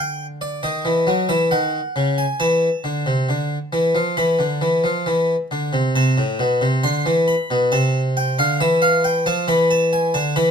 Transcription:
0.00 0.60 D3 medium
0.00 0.25 G5 medium
0.41 0.63 D5 medium
0.63 0.85 D#3 medium
0.63 1.27 D#5 medium
0.85 1.07 E3 medium
1.07 1.29 F#3 medium
1.29 1.51 E3 medium
1.29 1.51 E5 medium
1.51 1.79 D#3 medium
1.51 2.16 F#5 medium
1.96 2.23 C#3 medium
2.18 2.40 G#5 medium
2.40 2.68 E3 medium
2.40 4.14 A5 medium
2.84 3.06 D3 medium
3.06 3.28 C3 medium
3.29 3.56 D3 medium
3.73 3.95 E3 medium
3.95 4.17 F3 medium
4.17 4.39 E3 medium
4.17 5.47 B5 medium
4.39 4.61 D3 medium
4.61 4.84 E3 medium
4.84 5.06 F3 medium
5.06 5.34 E3 medium
5.51 5.73 D3 medium
5.73 5.94 C3 medium
5.96 6.17 C3 medium
5.96 6.81 A5 medium
6.18 6.39 A2 medium
6.39 6.61 B2 medium
6.61 6.83 C3 medium
6.83 7.05 D3 medium
6.83 7.11 C6 medium
7.06 7.33 E3 medium
7.28 7.55 B5 medium
7.50 7.72 B2 medium
7.72 8.36 C3 medium
7.72 7.99 A5 medium
8.17 8.38 G5 medium
8.39 8.60 D3 medium
8.39 8.60 F5 medium
8.60 9.24 E3 medium
8.60 8.82 E5 medium
8.82 9.03 F5 medium
9.04 9.25 G5 medium
9.26 9.47 F3 loud
9.26 9.47 A5 medium
9.48 10.12 E3 loud
9.48 9.69 B5 medium
9.71 9.92 A5 medium
9.93 10.14 G#5 medium
10.14 10.35 D3 medium
10.14 10.35 A5 medium
10.36 10.51 E3 loud
10.36 10.51 B5 medium

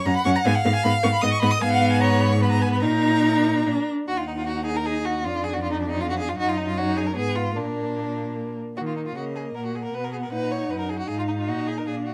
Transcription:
0.06 0.14 F#2 loud
0.06 0.14 C#4 medium
0.06 0.47 F#5 loud
0.06 0.15 A#5 loud
0.16 0.24 B5 loud
0.25 0.34 F#2 loud
0.25 0.33 C#4 loud
0.25 0.29 C#6 loud
0.36 0.40 A#5 loud
0.45 0.53 G#2 loud
0.45 0.53 B3 loud
0.45 1.25 F5 loud
0.45 0.56 G#5 loud
0.55 0.65 F#5 loud
0.65 0.73 G#2 loud
0.65 0.73 B3 medium
0.65 0.75 F5 loud
0.75 0.84 G#5 loud
0.84 0.92 G#2 loud
0.84 0.93 B3 loud
0.84 0.92 B5 loud
1.03 1.12 G#2 loud
1.03 1.11 B3 medium
1.03 1.07 C#6 loud
1.13 1.23 B5 loud
1.22 1.31 G#2 loud
1.22 1.30 B3 medium
1.22 1.62 D#5 loud
1.22 1.32 D#6 loud
1.32 1.41 C#6 loud
1.42 1.50 G#2 loud
1.42 1.50 B3 loud
1.42 1.53 B5 loud
1.51 1.63 D#6 loud
1.61 2.84 G#2 loud
1.61 2.37 B3 loud
1.61 2.01 F5 loud
1.61 1.72 G#5 loud
1.72 1.81 F#5 loud
1.81 1.85 F5 loud
1.91 2.02 G#5 loud
2.01 2.44 C#5 loud
2.01 2.23 A#5 loud
2.21 2.34 B5 loud
2.32 2.42 C#6 loud
2.41 2.84 B3 loud
2.41 2.85 B4 loud
2.41 2.51 B5 loud
2.52 2.63 A#5 loud
2.62 2.72 G#5 loud
2.73 2.83 B5 loud
2.82 3.66 A#2 medium
2.82 3.68 D#4 medium
2.82 3.88 A#4 medium
2.82 3.86 A#5 loud
3.66 3.74 A#2 medium
3.66 3.88 D4 medium
4.08 5.27 D#2 medium
4.08 5.22 D#4 medium
4.08 4.19 F#4 loud
4.08 4.83 F#5 medium
4.17 4.27 F4 medium
4.28 4.32 D#4 medium
4.37 4.46 F4 medium
4.46 4.65 F#4 medium
4.65 4.78 G#4 medium
4.76 4.87 A#4 medium
4.86 5.07 G#4 loud
4.86 5.25 D#5 medium
5.05 5.26 F#4 medium
5.24 6.39 F2 medium
5.24 6.35 D4 medium
5.24 5.45 F4 loud
5.24 6.03 D5 medium
5.44 5.55 G#4 medium
5.54 5.62 F#4 medium
5.63 5.71 F4 medium
5.72 5.81 D#4 medium
5.81 5.90 D4 medium
5.91 6.02 D#4 medium
6.01 6.09 F4 loud
6.01 6.39 F5 medium
6.10 6.18 F#4 medium
6.19 6.30 G#4 loud
6.29 6.37 F4 medium
6.38 7.19 F#2 medium
6.38 6.75 D#4 medium
6.38 6.50 F#4 loud
6.38 6.80 D#5 medium
6.49 6.59 F4 medium
6.57 6.67 D#4 medium
6.68 6.79 F4 medium
6.77 7.16 D#4 medium
6.77 6.98 F#4 loud
6.77 7.19 C#5 medium
6.97 7.08 G#4 medium
7.07 7.15 A#4 medium
7.16 7.59 G#2 medium
7.16 7.56 B3 medium
7.16 7.37 G#4 loud
7.16 7.56 B4 medium
7.36 7.57 F4 medium
7.56 8.58 A#2 medium
7.56 8.55 A#3 medium
7.56 8.57 D4 medium
7.56 8.55 A#4 medium
8.77 9.14 D#3 medium
8.77 9.13 A#3 medium
8.77 8.81 F#4 medium
8.87 8.96 F4 medium
8.97 9.00 D#4 medium
9.06 9.15 F4 medium
9.16 9.54 C#3 medium
9.16 9.95 A#3 soft
9.16 9.24 F#4 medium
9.16 9.57 D#5 medium
9.36 9.43 G#4 medium
9.55 9.92 A#2 medium
9.55 9.65 A#4 medium
9.55 11.08 F#5 medium
9.66 9.77 F#4 medium
9.75 9.84 G#4 medium
9.84 9.96 A#4 medium
9.93 10.31 B2 medium
9.93 10.33 B3 soft
9.93 10.05 B4 medium
10.04 10.12 A#4 medium
10.13 10.16 G#4 medium
10.23 10.32 A#4 medium
10.32 10.70 A#2 medium
10.32 11.08 D#4 medium
10.32 10.53 B4 medium
10.51 10.72 C#5 medium
10.70 11.08 F#2 medium
10.70 10.79 B4 medium
10.79 10.91 A#4 medium
10.89 10.98 G#4 medium
10.99 11.09 F#4 medium
11.08 11.50 G#2 medium
11.08 11.88 D#4 medium
11.08 11.18 G#4 medium
11.08 11.49 F5 medium
11.19 11.23 F4 medium
11.28 11.32 D#4 medium
11.39 11.50 F4 medium
11.47 11.87 A#2 medium
11.47 11.69 F#4 medium
11.47 11.87 D#5 medium
11.67 11.79 G#4 medium
11.78 11.86 A#4 medium
11.87 12.14 A#2 medium
11.87 12.14 D4 medium
11.87 11.95 G#4 medium
11.87 12.14 F5 medium
12.06 12.14 F#4 medium

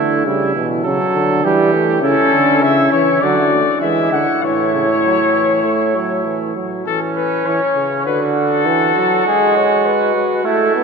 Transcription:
0.00 0.25 D3 medium
0.00 0.27 A3 medium
0.00 0.25 E4 medium
0.25 0.55 C#3 medium
0.25 0.55 G3 medium
0.25 0.68 E4 medium
0.56 0.84 B2 medium
0.56 0.86 E3 medium
0.84 0.98 C#3 medium
0.84 1.43 F#3 medium
0.84 1.46 A4 medium
1.14 1.46 D3 medium
1.44 2.02 E3 medium
1.44 1.72 G3 medium
1.44 2.02 G4 medium
1.73 2.04 A3 medium
2.02 2.15 C#3 medium
2.02 3.21 C#4 medium
2.02 2.60 E4 medium
2.02 2.64 A4 medium
2.32 2.63 D3 medium
2.62 2.91 C#3 medium
2.62 3.21 E4 medium
2.62 2.91 E5 medium
2.92 3.21 E3 medium
2.92 3.23 C#5 medium
3.21 3.60 D3 medium
3.21 3.36 F#3 medium
3.21 3.60 F#4 medium
3.21 3.81 D5 medium
3.52 3.65 A3 medium
3.81 4.10 E3 medium
3.81 4.20 G#3 medium
3.81 4.39 E4 medium
3.81 4.11 E5 medium
4.12 4.26 D3 medium
4.12 4.45 F#5 medium
4.43 6.52 A2 medium
4.43 4.71 E3 medium
4.43 6.52 E4 medium
4.43 6.56 C#5 medium
4.73 4.87 C#3 medium
5.04 5.18 F#3 medium
5.34 5.63 E3 medium
5.64 5.97 A3 medium
5.95 6.27 F#3 medium
6.26 6.55 E3 medium
6.56 6.85 F#3 medium
6.86 7.42 E3 medium
6.86 8.02 C#4 medium
6.86 7.00 A4 medium
7.16 7.47 B4 medium
7.46 7.59 E3 medium
7.46 8.05 C#5 medium
7.76 8.07 C#3 medium
8.06 8.67 D3 loud
8.06 10.47 F#4 medium
8.06 8.19 B4 medium
8.36 9.24 A4 medium
8.66 8.96 E3 medium
8.96 9.26 F#3 medium
9.26 10.14 G#3 medium
9.26 9.56 G#4 medium
9.57 9.87 C#5 medium
9.86 10.45 B4 medium
10.15 10.44 G#3 medium
10.45 10.74 A3 medium
10.45 10.84 E4 medium
10.45 10.84 A4 medium
10.75 10.84 B3 medium

